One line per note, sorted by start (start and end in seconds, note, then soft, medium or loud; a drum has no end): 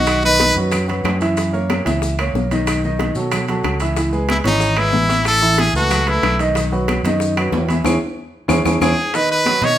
0.00 0.50 B1 medium
0.00 0.18 D#3 medium
0.00 0.19 D#4 medium
0.00 0.22 F#4 loud
0.00 0.19 D#5 medium
0.06 high bongo medium
0.06 high timbale medium
0.06 claves medium
0.06 maracas medium
0.23 0.51 D#3 medium
0.23 0.51 D#4 medium
0.23 0.55 B4 loud
0.23 0.51 D#5 medium
0.23 high bongo soft
0.23 high conga soft
0.23 maracas soft
0.39 high bongo medium
0.39 high conga medium
0.39 high timbale medium
0.55 1.01 F#2 medium
0.55 0.83 F#3 medium
0.55 0.83 F#4 medium
0.55 0.83 B4 medium
0.55 high conga soft
0.55 maracas medium
0.72 high bongo medium
0.72 high conga soft
0.72 low conga medium
0.72 high timbale loud
0.72 claves medium
0.72 maracas medium
0.88 1.15 F#3 medium
0.88 1.15 F#4 medium
0.88 1.15 B4 medium
0.88 high bongo soft
0.88 high conga soft
0.88 low conga medium
0.88 high timbale medium
0.88 maracas soft
1.04 1.80 F#2 medium
1.04 high bongo soft
1.04 low bongo medium
1.04 high conga soft
1.04 high timbale loud
1.04 low timbale medium
1.04 claves medium
1.04 maracas soft
1.21 1.34 E3 medium
1.21 1.35 E4 medium
1.21 1.35 E5 medium
1.21 high bongo soft
1.21 high conga soft
1.21 high timbale medium
1.21 maracas medium
1.37 1.51 E3 medium
1.37 1.51 E4 medium
1.37 1.51 E5 medium
1.37 high bongo medium
1.37 high conga soft
1.37 high timbale medium
1.37 maracas medium
1.53 1.80 A#3 medium
1.53 1.80 A#4 medium
1.53 1.80 C#5 medium
1.53 high bongo soft
1.53 high conga soft
1.53 maracas soft
1.70 high bongo medium
1.70 high conga medium
1.70 high timbale medium
1.70 claves medium
1.70 maracas soft
1.85 2.31 C#2 medium
1.85 2.12 E3 medium
1.85 2.12 E4 medium
1.85 2.12 E5 medium
1.85 high conga loud
1.85 high timbale medium
1.85 maracas medium
2.02 high bongo medium
2.02 high conga soft
2.02 maracas medium
2.19 2.45 A#3 medium
2.19 2.45 A#4 medium
2.19 2.46 C#5 medium
2.19 high bongo soft
2.19 high conga soft
2.19 high timbale medium
2.19 claves medium
2.19 maracas soft
2.34 3.09 B1 medium
2.34 high bongo soft
2.34 low bongo medium
2.34 high conga medium
2.34 maracas soft
2.51 2.78 D#3 medium
2.51 2.78 D#4 medium
2.51 2.78 D#5 medium
2.51 high bongo soft
2.51 high conga medium
2.51 high timbale medium
2.51 maracas medium
2.67 high bongo medium
2.67 high conga soft
2.67 high timbale loud
2.67 claves medium
2.67 maracas medium
2.83 3.11 D#3 medium
2.83 3.11 D#4 medium
2.83 3.11 D#5 medium
2.83 high bongo soft
2.83 high conga soft
2.83 maracas soft
2.99 high bongo medium
2.99 high conga medium
2.99 high timbale medium
2.99 maracas soft
3.15 3.61 B2 medium
3.15 3.42 F#3 medium
3.15 3.43 F#4 medium
3.15 3.43 A4 medium
3.15 high conga soft
3.15 maracas medium
3.32 high bongo medium
3.32 high conga soft
3.32 low conga medium
3.32 high timbale loud
3.32 claves medium
3.32 maracas medium
3.48 3.75 F#3 medium
3.48 3.75 F#4 medium
3.48 3.75 A4 medium
3.48 high bongo soft
3.48 high conga soft
3.48 low conga medium
3.48 high timbale medium
3.48 maracas soft
3.63 4.39 C#2 medium
3.63 high bongo soft
3.63 low bongo medium
3.63 high conga soft
3.63 high timbale loud
3.63 claves medium
3.63 maracas soft
3.80 3.94 E3 medium
3.80 3.94 E4 medium
3.80 3.95 E5 medium
3.80 high bongo soft
3.80 high conga soft
3.80 high timbale medium
3.80 maracas medium
3.97 4.10 E3 medium
3.97 4.10 E4 medium
3.97 4.11 E5 medium
3.97 high bongo medium
3.97 high conga soft
3.97 high timbale medium
3.97 maracas medium
4.12 4.39 G#3 medium
4.12 4.39 G#4 medium
4.12 4.39 B4 medium
4.12 high bongo soft
4.12 high conga soft
4.12 maracas soft
4.29 4.37 E4 medium
4.29 high bongo medium
4.29 high conga loud
4.29 high timbale medium
4.29 claves medium
4.29 maracas soft
4.44 4.90 G#1 medium
4.44 4.71 E3 medium
4.44 4.71 C#4 medium
4.44 4.80 D#4 medium
4.44 4.71 C#5 medium
4.44 high conga loud
4.44 high timbale medium
4.44 maracas medium
4.60 high bongo medium
4.60 high conga soft
4.60 maracas medium
4.77 5.04 G#3 medium
4.77 5.27 E4 medium
4.77 5.04 G#4 medium
4.77 5.04 B4 medium
4.77 high bongo soft
4.77 high conga soft
4.77 high timbale medium
4.77 claves medium
4.77 maracas soft
4.93 5.68 A1 medium
4.93 high bongo soft
4.93 low bongo medium
4.93 high conga medium
4.93 maracas soft
5.09 5.36 E3 medium
5.09 5.36 E4 medium
5.09 5.36 E5 medium
5.09 high bongo soft
5.09 high conga medium
5.09 high timbale medium
5.09 maracas medium
5.25 5.62 A4 loud
5.25 high bongo medium
5.25 high conga soft
5.25 high timbale medium
5.25 claves medium
5.25 maracas medium
5.42 5.68 E3 medium
5.42 5.69 E4 medium
5.42 5.69 E5 medium
5.42 high bongo soft
5.42 high conga soft
5.58 5.75 G#4 loud
5.58 high bongo medium
5.58 high conga medium
5.58 high timbale medium
5.58 maracas soft
5.73 6.19 C#2 medium
5.73 6.01 A3 medium
5.73 6.10 F#4 loud
5.73 6.01 A4 medium
5.73 6.02 B4 medium
5.73 high conga soft
5.73 maracas medium
5.91 high bongo medium
5.91 high conga soft
5.91 low conga medium
5.91 high timbale medium
5.91 claves medium
5.91 maracas medium
6.07 6.33 A3 medium
6.07 6.40 E4 medium
6.07 6.34 A4 medium
6.07 6.34 B4 medium
6.07 high bongo soft
6.07 high conga soft
6.07 low conga medium
6.07 high timbale medium
6.07 maracas soft
6.23 6.98 B1 medium
6.23 high bongo soft
6.23 low bongo medium
6.23 high conga soft
6.23 high timbale loud
6.23 claves medium
6.23 maracas soft
6.39 6.53 D#3 medium
6.39 6.53 D#4 medium
6.39 6.53 D#5 medium
6.39 high bongo soft
6.39 high conga soft
6.39 high timbale medium
6.39 maracas medium
6.55 6.69 D#3 medium
6.55 6.69 D#4 medium
6.55 6.69 D#5 medium
6.55 high bongo medium
6.55 high conga soft
6.55 high timbale medium
6.55 maracas medium
6.71 6.98 F#3 medium
6.71 6.99 F#4 medium
6.71 6.99 B4 medium
6.71 high bongo soft
6.71 high conga soft
6.71 maracas soft
6.88 high bongo medium
6.88 high conga medium
6.88 high timbale medium
6.88 claves medium
6.88 maracas soft
7.03 7.49 F#2 medium
7.03 7.31 D#3 medium
7.03 7.31 D#4 medium
7.03 7.31 D#5 medium
7.03 high conga loud
7.03 high timbale medium
7.03 maracas medium
7.20 high bongo medium
7.20 high conga soft
7.20 maracas medium
7.36 7.63 F#3 medium
7.36 7.63 F#4 medium
7.36 7.64 B4 medium
7.36 high bongo soft
7.36 high conga soft
7.36 high timbale medium
7.36 claves medium
7.36 maracas soft
7.52 7.82 E2 medium
7.52 high bongo soft
7.52 low bongo medium
7.52 high conga medium
7.52 low timbale medium
7.52 maracas soft
7.68 7.82 E3 medium
7.68 7.82 E4 medium
7.68 7.82 E5 medium
7.68 high bongo soft
7.68 high conga medium
7.68 high timbale medium
7.68 maracas medium
7.84 7.97 E2 medium
7.84 7.95 C#4 loud
7.84 7.95 E4 medium
7.84 7.95 G#4 loud
7.84 low bongo loud
7.84 high conga loud
7.84 high timbale loud
7.84 claves loud
7.84 maracas loud
8.48 8.61 E2 loud
8.48 8.59 C#4 loud
8.48 8.59 E4 loud
8.48 8.59 G#4 loud
8.48 low bongo medium
8.48 high conga loud
8.48 high timbale loud
8.48 claves loud
8.48 maracas loud
8.65 8.77 E2 medium
8.65 8.76 C#4 medium
8.65 8.76 E4 medium
8.65 8.76 G#4 medium
8.65 low bongo loud
8.65 high conga medium
8.65 high timbale loud
8.65 claves loud
8.65 maracas medium
8.81 8.93 E2 medium
8.81 8.92 C#4 medium
8.81 8.92 E4 medium
8.81 8.92 G#4 medium
8.81 9.17 G#4 medium
8.81 low bongo loud
8.81 high conga medium
8.81 high timbale loud
8.81 claves loud
8.81 maracas medium
9.14 9.41 D#3 medium
9.14 9.41 D#4 medium
9.14 9.31 B4 loud
9.14 9.41 D#5 medium
9.14 high bongo medium
9.14 high conga soft
9.14 high timbale medium
9.14 maracas medium
9.30 9.66 B4 loud
9.30 high bongo soft
9.30 high conga soft
9.30 maracas soft
9.46 9.60 F#3 medium
9.46 9.60 F#4 medium
9.46 9.60 B4 medium
9.46 high bongo medium
9.46 high conga medium
9.46 high timbale medium
9.46 claves medium
9.46 maracas soft
9.62 9.78 B2 medium
9.62 9.78 D#3 medium
9.62 9.78 D#4 medium
9.62 9.78 C#5 loud
9.62 9.78 D#5 medium
9.62 high conga loud
9.62 high timbale medium
9.62 maracas medium